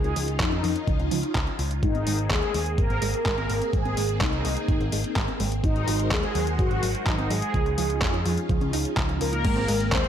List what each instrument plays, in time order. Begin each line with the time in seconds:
Already playing: picked electric bass C#2, string machine C#4 D#4 F4, analog polysynth G#4
0.04 synth arpeggio sound C#4, closed hi-hat
0.16 picked electric bass C#2, synth arpeggio sound F3, open hi-hat
0.28 closed hi-hat
0.40 picked electric bass F2, synth arpeggio sound F3, analog polysynth D#4, kick, clap, closed hi-hat
0.52 synth arpeggio sound C#4, closed hi-hat
0.64 picked electric bass F2, synth arpeggio sound F3, open hi-hat
0.76 closed hi-hat
0.88 picked electric bass C#2, synth arpeggio sound F3, kick, closed hi-hat
0.99 picked electric bass C#2, synth arpeggio sound C#4, closed hi-hat
1.11 picked electric bass C#2, synth arpeggio sound F3, open hi-hat
1.23 closed hi-hat
1.35 picked electric bass C#2, synth arpeggio sound F3, kick, clap, closed hi-hat
1.47 synth arpeggio sound C#4, closed hi-hat
1.59 picked electric bass C#2, synth arpeggio sound F3, open hi-hat
1.71 closed hi-hat
1.83 picked electric bass G#1, synth arpeggio sound G#3, string machine A#3 C4 G#4, analog polysynth D#4, kick, closed hi-hat
1.95 synth arpeggio sound C4, closed hi-hat
2.07 picked electric bass G#1, synth arpeggio sound G#3, open hi-hat
2.19 closed hi-hat
2.30 picked electric bass D#2, synth arpeggio sound G#3, analog polysynth G#4, kick, clap, closed hi-hat
2.42 synth arpeggio sound C4, closed hi-hat
2.54 picked electric bass D#2, synth arpeggio sound G#3, open hi-hat
2.66 closed hi-hat
2.78 picked electric bass G#1, synth arpeggio sound G#3, analog polysynth A#4, kick, closed hi-hat
2.90 picked electric bass G#1, synth arpeggio sound C4, closed hi-hat
3.02 picked electric bass G#1, synth arpeggio sound G#3, open hi-hat
3.14 closed hi-hat
3.26 picked electric bass G#1, synth arpeggio sound G#3, analog polysynth A#4, kick, clap, closed hi-hat
3.38 synth arpeggio sound C4, closed hi-hat
3.50 picked electric bass G#1, synth arpeggio sound G#3, open hi-hat
3.62 closed hi-hat
3.73 picked electric bass G#1, synth arpeggio sound G#3, analog polysynth G#4, kick, closed hi-hat
3.85 synth arpeggio sound C4, closed hi-hat
3.97 picked electric bass G#1, synth arpeggio sound G#3, open hi-hat
4.09 closed hi-hat
4.21 picked electric bass C2, synth arpeggio sound G#3, analog polysynth D#4, kick, clap, closed hi-hat
4.33 synth arpeggio sound C4, closed hi-hat
4.45 picked electric bass C2, synth arpeggio sound G#3, open hi-hat
4.57 closed hi-hat
4.68 picked electric bass G#1, synth arpeggio sound G#3, kick, closed hi-hat
4.80 picked electric bass G#1, synth arpeggio sound C4, closed hi-hat
4.92 picked electric bass G#1, synth arpeggio sound G#3, open hi-hat
5.04 closed hi-hat
5.16 picked electric bass G#1, synth arpeggio sound G#3, kick, clap, closed hi-hat
5.28 synth arpeggio sound C4, closed hi-hat
5.40 picked electric bass G#1, synth arpeggio sound G#3, open hi-hat
5.52 closed hi-hat
5.64 picked electric bass G#1, synth arpeggio sound F#3, string machine G#3 D#4 F#4 A#4 C5, analog polysynth D#4, kick, closed hi-hat
5.76 synth arpeggio sound C4, closed hi-hat
5.88 picked electric bass G#1, synth arpeggio sound F#3, open hi-hat
6.00 closed hi-hat
6.11 picked electric bass D#2, synth arpeggio sound F#3, analog polysynth G#4, kick, clap, closed hi-hat
6.23 synth arpeggio sound C4, closed hi-hat
6.35 picked electric bass D#2, synth arpeggio sound F#3, open hi-hat
6.47 closed hi-hat
6.59 picked electric bass G#1, synth arpeggio sound F#3, analog polysynth F#4, kick, closed hi-hat
6.71 picked electric bass G#1, synth arpeggio sound C4, closed hi-hat
6.83 picked electric bass G#1, synth arpeggio sound F#3, open hi-hat
6.95 closed hi-hat
7.07 picked electric bass G#1, synth arpeggio sound F#3, analog polysynth D#4, kick, clap, closed hi-hat
7.18 synth arpeggio sound C4, closed hi-hat
7.30 picked electric bass G#1, synth arpeggio sound F#3, analog polysynth G#4, open hi-hat
7.42 closed hi-hat
7.54 picked electric bass C#2, synth arpeggio sound F3, string machine C#4 F4, kick, closed hi-hat
7.66 synth arpeggio sound C#4, closed hi-hat
7.78 picked electric bass C#2, synth arpeggio sound F3, open hi-hat
7.90 closed hi-hat
8.02 picked electric bass F2, synth arpeggio sound F3, kick, clap, closed hi-hat
8.14 synth arpeggio sound C#4, closed hi-hat
8.26 picked electric bass F2, synth arpeggio sound F3, open hi-hat
8.38 closed hi-hat
8.49 picked electric bass C#2, synth arpeggio sound F3, kick, closed hi-hat
8.61 picked electric bass C#2, synth arpeggio sound C#4, closed hi-hat
8.73 picked electric bass C#2, synth arpeggio sound D#4, open hi-hat
8.85 closed hi-hat
8.97 picked electric bass C#2, synth arpeggio sound F3, kick, clap, closed hi-hat
9.09 synth arpeggio sound F3, closed hi-hat
9.21 picked electric bass C#2, synth arpeggio sound F3, analog polysynth A#3 A#4, open hi-hat
9.33 synth arpeggio sound D#4, closed hi-hat
9.45 picked electric bass G#1, synth arpeggio sound G#3, string machine A#3 C4 G#4, kick, closed hi-hat, crash
9.56 synth arpeggio sound C4, closed hi-hat
9.68 picked electric bass G#1, synth arpeggio sound G#3, open hi-hat
9.80 closed hi-hat
9.92 picked electric bass D#2, synth arpeggio sound G#3, analog polysynth C4 C5, kick, clap, closed hi-hat
10.04 synth arpeggio sound C4, closed hi-hat